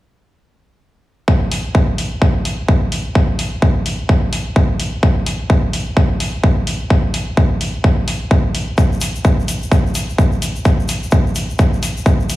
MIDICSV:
0, 0, Header, 1, 2, 480
1, 0, Start_track
1, 0, Tempo, 468750
1, 1311, Time_signature, 4, 2, 24, 8
1, 12658, End_track
2, 0, Start_track
2, 0, Title_t, "Drums"
2, 1309, Note_on_c, 9, 36, 104
2, 1412, Note_off_c, 9, 36, 0
2, 1551, Note_on_c, 9, 46, 98
2, 1654, Note_off_c, 9, 46, 0
2, 1789, Note_on_c, 9, 36, 105
2, 1892, Note_off_c, 9, 36, 0
2, 2031, Note_on_c, 9, 46, 90
2, 2133, Note_off_c, 9, 46, 0
2, 2269, Note_on_c, 9, 36, 109
2, 2371, Note_off_c, 9, 36, 0
2, 2510, Note_on_c, 9, 46, 94
2, 2613, Note_off_c, 9, 46, 0
2, 2749, Note_on_c, 9, 36, 106
2, 2851, Note_off_c, 9, 36, 0
2, 2990, Note_on_c, 9, 46, 95
2, 3092, Note_off_c, 9, 46, 0
2, 3229, Note_on_c, 9, 36, 109
2, 3331, Note_off_c, 9, 36, 0
2, 3470, Note_on_c, 9, 46, 97
2, 3573, Note_off_c, 9, 46, 0
2, 3709, Note_on_c, 9, 36, 112
2, 3811, Note_off_c, 9, 36, 0
2, 3950, Note_on_c, 9, 46, 97
2, 4053, Note_off_c, 9, 46, 0
2, 4189, Note_on_c, 9, 36, 108
2, 4291, Note_off_c, 9, 36, 0
2, 4430, Note_on_c, 9, 46, 99
2, 4532, Note_off_c, 9, 46, 0
2, 4669, Note_on_c, 9, 36, 110
2, 4772, Note_off_c, 9, 36, 0
2, 4911, Note_on_c, 9, 46, 101
2, 5013, Note_off_c, 9, 46, 0
2, 5150, Note_on_c, 9, 36, 114
2, 5252, Note_off_c, 9, 36, 0
2, 5390, Note_on_c, 9, 46, 101
2, 5493, Note_off_c, 9, 46, 0
2, 5630, Note_on_c, 9, 36, 114
2, 5732, Note_off_c, 9, 36, 0
2, 5872, Note_on_c, 9, 46, 101
2, 5974, Note_off_c, 9, 46, 0
2, 6110, Note_on_c, 9, 36, 117
2, 6212, Note_off_c, 9, 36, 0
2, 6351, Note_on_c, 9, 46, 102
2, 6453, Note_off_c, 9, 46, 0
2, 6590, Note_on_c, 9, 36, 115
2, 6692, Note_off_c, 9, 36, 0
2, 6831, Note_on_c, 9, 46, 102
2, 6933, Note_off_c, 9, 46, 0
2, 7069, Note_on_c, 9, 36, 109
2, 7172, Note_off_c, 9, 36, 0
2, 7310, Note_on_c, 9, 46, 103
2, 7413, Note_off_c, 9, 46, 0
2, 7549, Note_on_c, 9, 36, 109
2, 7652, Note_off_c, 9, 36, 0
2, 7791, Note_on_c, 9, 46, 94
2, 7893, Note_off_c, 9, 46, 0
2, 8029, Note_on_c, 9, 36, 114
2, 8131, Note_off_c, 9, 36, 0
2, 8270, Note_on_c, 9, 46, 101
2, 8373, Note_off_c, 9, 46, 0
2, 8509, Note_on_c, 9, 36, 115
2, 8611, Note_off_c, 9, 36, 0
2, 8751, Note_on_c, 9, 46, 102
2, 8854, Note_off_c, 9, 46, 0
2, 8988, Note_on_c, 9, 36, 105
2, 8989, Note_on_c, 9, 82, 49
2, 9091, Note_off_c, 9, 36, 0
2, 9091, Note_off_c, 9, 82, 0
2, 9138, Note_on_c, 9, 82, 26
2, 9221, Note_off_c, 9, 82, 0
2, 9221, Note_on_c, 9, 82, 90
2, 9230, Note_on_c, 9, 46, 100
2, 9324, Note_off_c, 9, 82, 0
2, 9332, Note_off_c, 9, 46, 0
2, 9374, Note_on_c, 9, 82, 39
2, 9468, Note_off_c, 9, 82, 0
2, 9468, Note_on_c, 9, 82, 43
2, 9469, Note_on_c, 9, 36, 111
2, 9570, Note_off_c, 9, 82, 0
2, 9571, Note_off_c, 9, 36, 0
2, 9624, Note_on_c, 9, 82, 22
2, 9709, Note_on_c, 9, 46, 94
2, 9712, Note_off_c, 9, 82, 0
2, 9712, Note_on_c, 9, 82, 91
2, 9812, Note_off_c, 9, 46, 0
2, 9814, Note_off_c, 9, 82, 0
2, 9858, Note_on_c, 9, 82, 40
2, 9948, Note_on_c, 9, 36, 111
2, 9953, Note_off_c, 9, 82, 0
2, 9953, Note_on_c, 9, 82, 53
2, 10051, Note_off_c, 9, 36, 0
2, 10056, Note_off_c, 9, 82, 0
2, 10100, Note_on_c, 9, 82, 26
2, 10184, Note_off_c, 9, 82, 0
2, 10184, Note_on_c, 9, 82, 96
2, 10190, Note_on_c, 9, 46, 97
2, 10287, Note_off_c, 9, 82, 0
2, 10292, Note_off_c, 9, 46, 0
2, 10337, Note_on_c, 9, 82, 36
2, 10428, Note_on_c, 9, 36, 108
2, 10434, Note_off_c, 9, 82, 0
2, 10434, Note_on_c, 9, 82, 45
2, 10531, Note_off_c, 9, 36, 0
2, 10536, Note_off_c, 9, 82, 0
2, 10566, Note_on_c, 9, 82, 24
2, 10668, Note_off_c, 9, 82, 0
2, 10671, Note_on_c, 9, 46, 97
2, 10673, Note_on_c, 9, 82, 90
2, 10773, Note_off_c, 9, 46, 0
2, 10775, Note_off_c, 9, 82, 0
2, 10810, Note_on_c, 9, 82, 32
2, 10904, Note_off_c, 9, 82, 0
2, 10904, Note_on_c, 9, 82, 45
2, 10908, Note_on_c, 9, 36, 102
2, 11006, Note_off_c, 9, 82, 0
2, 11011, Note_off_c, 9, 36, 0
2, 11056, Note_on_c, 9, 82, 25
2, 11143, Note_off_c, 9, 82, 0
2, 11143, Note_on_c, 9, 82, 87
2, 11150, Note_on_c, 9, 46, 94
2, 11246, Note_off_c, 9, 82, 0
2, 11252, Note_off_c, 9, 46, 0
2, 11296, Note_on_c, 9, 82, 36
2, 11376, Note_off_c, 9, 82, 0
2, 11376, Note_on_c, 9, 82, 45
2, 11389, Note_on_c, 9, 36, 110
2, 11478, Note_off_c, 9, 82, 0
2, 11491, Note_off_c, 9, 36, 0
2, 11537, Note_on_c, 9, 82, 21
2, 11623, Note_off_c, 9, 82, 0
2, 11623, Note_on_c, 9, 82, 91
2, 11630, Note_on_c, 9, 46, 87
2, 11725, Note_off_c, 9, 82, 0
2, 11733, Note_off_c, 9, 46, 0
2, 11775, Note_on_c, 9, 82, 33
2, 11865, Note_off_c, 9, 82, 0
2, 11865, Note_on_c, 9, 82, 45
2, 11869, Note_on_c, 9, 36, 104
2, 11967, Note_off_c, 9, 82, 0
2, 11971, Note_off_c, 9, 36, 0
2, 12015, Note_on_c, 9, 82, 24
2, 12110, Note_on_c, 9, 46, 93
2, 12111, Note_off_c, 9, 82, 0
2, 12111, Note_on_c, 9, 82, 90
2, 12213, Note_off_c, 9, 46, 0
2, 12214, Note_off_c, 9, 82, 0
2, 12258, Note_on_c, 9, 82, 37
2, 12348, Note_off_c, 9, 82, 0
2, 12348, Note_on_c, 9, 82, 43
2, 12349, Note_on_c, 9, 36, 108
2, 12451, Note_off_c, 9, 36, 0
2, 12451, Note_off_c, 9, 82, 0
2, 12495, Note_on_c, 9, 82, 22
2, 12588, Note_off_c, 9, 82, 0
2, 12588, Note_on_c, 9, 82, 92
2, 12591, Note_on_c, 9, 46, 94
2, 12658, Note_off_c, 9, 46, 0
2, 12658, Note_off_c, 9, 82, 0
2, 12658, End_track
0, 0, End_of_file